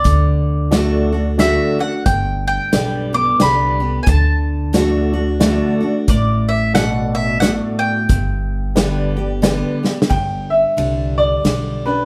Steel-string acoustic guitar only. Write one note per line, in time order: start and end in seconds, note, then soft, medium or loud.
0.04 0.70 D3 medium
0.71 1.11 D3 medium
0.71 1.11 A3 medium
0.71 1.11 D4 medium
0.71 1.11 F#4 medium
1.13 1.38 D4 medium
1.13 1.38 F#4 medium
1.39 1.78 D3 medium
1.39 1.78 A3 medium
1.39 1.78 D4 loud
1.39 1.78 F#4 loud
1.79 2.06 D4 medium
1.79 2.05 F#4 medium
2.06 3.35 G2 medium
2.72 3.12 D3 medium
2.72 3.12 G3 medium
2.72 3.12 B3 medium
2.72 3.12 G4 loud
3.13 3.39 B3 soft
3.13 3.39 G4 medium
3.40 3.79 D3 medium
3.40 3.79 G3 medium
3.40 3.80 B3 medium
3.40 3.79 G4 loud
3.80 4.07 B3 soft
3.80 4.06 G4 medium
4.06 4.72 D3 medium
4.73 5.13 D3 medium
4.73 5.13 A3 medium
4.73 5.13 D4 medium
4.73 5.12 F#4 loud
5.13 5.40 D4 soft
5.13 5.39 F#4 medium
5.40 5.80 D3 loud
5.40 5.80 A3 loud
5.40 5.80 D4 loud
5.40 5.79 F#4 loud
5.80 6.07 D4 medium
5.80 6.06 F#4 medium
6.08 7.37 A2 medium
6.76 7.40 B2 medium
7.42 8.06 A2 medium
8.09 9.38 G2 medium
8.76 9.15 D3 medium
8.76 9.15 G3 medium
8.76 9.16 B3 medium
8.76 9.15 G4 loud
9.17 9.42 B3 soft
9.17 9.42 G4 medium
9.42 9.82 D3 medium
9.42 9.82 G3 medium
9.42 9.82 B3 medium
9.42 9.82 G4 loud
9.83 10.10 B3 medium
9.83 10.09 G4 medium
10.09 11.39 G2 medium
10.77 11.42 D3 soft
10.77 11.42 G3 medium
10.77 11.42 D4 medium
10.77 11.42 G4 medium
11.44 11.84 D3 medium
11.44 11.84 G3 medium
11.44 11.84 D4 medium
11.44 11.84 G4 medium
11.85 12.05 D4 soft
11.85 12.05 G4 soft